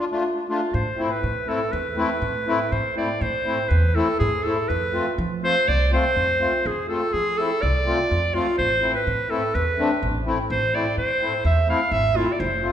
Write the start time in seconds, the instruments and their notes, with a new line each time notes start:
Already playing: clarinet D4
0.11 accordion A3 D4 F4
0.48 accordion A3 D4 F4, clarinet F4
0.74 upright bass A2, clarinet C5
0.97 accordion A3 C4 E4
1.03 clarinet C5
1.11 clarinet B4
1.23 upright bass A2
1.47 accordion A3 C4 E4, clarinet A4
1.72 upright bass E2, clarinet B4
1.96 accordion A3 C4 E4
2.22 upright bass A2
2.46 accordion A3 C4 E4
2.72 upright bass A2, clarinet C5
2.96 accordion A3 C4 E4, clarinet D5
3.21 upright bass A2, clarinet C5
3.45 accordion A3 C4 E4
3.69 upright bass E2, clarinet B4
3.95 accordion A3 C4 E4, clarinet A4
4.19 upright bass A2, clarinet G#4
4.44 accordion A3 C4 E4, clarinet A4
4.68 upright bass F2, clarinet B4
4.93 accordion A3 C4 F4
5.18 upright bass F3
5.42 accordion A3 C4 F4, clarinet C5
5.68 upright bass C2, clarinet D5
5.92 accordion A3 C4 F4, clarinet C5
6.16 upright bass F2
6.39 accordion A3 C4 F4
6.66 upright bass F2, clarinet G#4
6.89 accordion A3 C4 F4, clarinet A4
7.13 upright bass F3, clarinet G#4
7.38 accordion A3 C4 E4, clarinet A4
7.62 upright bass C2, clarinet D5
7.86 accordion A3 C4 F4
8.11 upright bass F2
8.34 accordion A3 C4 F4, clarinet F4
8.58 upright bass A1, clarinet C5
8.81 accordion A3 C4 E4
8.94 clarinet B4
9.07 upright bass A2
9.29 accordion A3 C4 E4, clarinet A4
9.54 upright bass E2, clarinet B4
9.78 accordion A3 C4 D4
10.03 upright bass A1
10.25 accordion A3 C4 E4
10.50 upright bass A1, clarinet C5
10.74 accordion A3 C4 E4, clarinet D5
10.97 upright bass A2, clarinet C5
11.21 accordion A3 C4 E4
11.45 upright bass E2, clarinet E5
11.68 accordion A3 C4 E4, clarinet F5
11.91 upright bass G#1, clarinet E5
12.15 accordion A3 C4 E4, clarinet F4
12.32 clarinet D5
12.40 upright bass F1, clarinet C5
12.62 accordion A3 C4 F4
12.68 clarinet C5